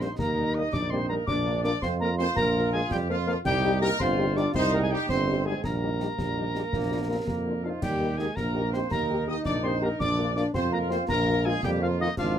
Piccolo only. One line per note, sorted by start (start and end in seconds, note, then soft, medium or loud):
0.01 0.18 C6 medium
0.18 0.56 A#5 medium
0.55 0.72 D#6 medium
0.72 0.92 D6 medium
0.90 1.08 C6 medium
1.09 1.15 A#5 medium
1.27 1.61 D6 medium
1.64 1.81 D6 medium
1.82 1.88 C6 medium
2.00 2.17 A#5 medium
2.18 2.24 C6 medium
2.36 2.70 A#5 medium
2.73 2.90 G#5 medium
2.91 2.97 G5 loud
3.10 3.16 F5 medium
3.26 3.32 F5 medium
3.45 3.79 G5 loud
3.81 3.87 A#5 loud
3.99 4.38 C6 medium
4.37 4.54 D6 medium
4.55 4.61 C6 loud
4.73 4.82 A#5 medium
4.82 4.92 G#5 medium
4.91 5.08 G5 medium
5.09 5.47 C6 medium
5.46 5.64 G#5 medium
5.64 7.39 A#5 medium
7.63 7.69 F5 medium
7.82 8.19 G5 medium
8.18 8.37 G#5 medium
8.36 8.72 A#5 medium
8.73 8.79 C6 medium
8.91 9.25 A#5 medium
9.28 9.44 D#6 medium
9.45 9.51 D6 medium
9.63 9.80 C6 medium
9.82 9.88 A#5 medium
10.00 10.34 D6 medium
10.36 10.42 D6 medium
10.54 10.60 C6 medium
10.72 10.78 A#5 medium
10.90 10.96 C6 medium
11.09 11.47 A#5 medium
11.45 11.63 G#5 medium
11.64 11.70 G5 medium
11.81 11.87 F5 medium
12.00 12.17 D#5 medium
12.18 12.39 F5 medium